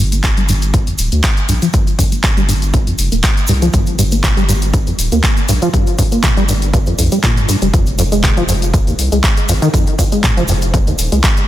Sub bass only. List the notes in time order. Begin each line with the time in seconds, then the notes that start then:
Already playing: G1
0.37 G1
0.99 D1
1.12 D2
1.49 A#1
2.37 G1
2.99 F1
3.12 D1
3.49 C2
3.74 G1
4.37 G1
4.99 D1
5.12 D2
5.49 A#1
6.37 G1
6.99 A#1
7.62 F1
7.74 F1
8.37 F1
8.99 C2
9.12 C2
9.49 G#1
10.37 F1
10.99 D#1
11.12 C2